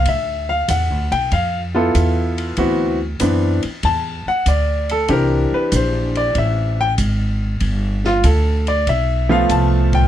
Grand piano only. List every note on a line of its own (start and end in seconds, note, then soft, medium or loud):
0.09 0.49 E5 medium
0.49 0.68 F5 medium
0.70 1.11 F#5 medium
1.12 1.31 G5 loud
1.33 1.58 F5 medium
1.75 2.54 B3 medium
1.75 2.54 E4 medium
1.75 2.53 F4 medium
1.75 2.54 A4 medium
2.58 2.97 E3 medium
2.58 2.97 B3 medium
2.58 2.97 C4 medium
2.58 2.97 F#4 medium
3.20 3.59 E3 medium
3.20 3.59 B3 medium
3.20 3.60 C4 soft
3.20 3.60 D4 medium
3.85 4.26 A5 loud
4.28 4.46 F#5 medium
4.48 4.89 D5 medium
4.91 5.09 A4 medium
5.09 6.86 E3 medium
5.09 6.86 C4 soft
5.09 6.86 D4 medium
5.09 6.86 G4 medium
5.09 5.53 A#4 medium
5.54 5.72 B4 medium
5.76 6.16 C5 medium
6.17 6.35 D5 medium
6.38 6.79 E5 medium
6.81 6.92 G5 loud
8.06 8.24 F4 medium
8.25 8.66 A4 medium
8.68 8.86 D5 medium
8.89 9.30 E5 loud
9.29 10.08 F3 medium
9.29 10.08 A3 medium
9.29 10.08 B3 medium
9.29 10.08 F4 medium
9.29 9.50 F5 loud
9.51 9.92 A5 medium
9.95 10.08 G5 loud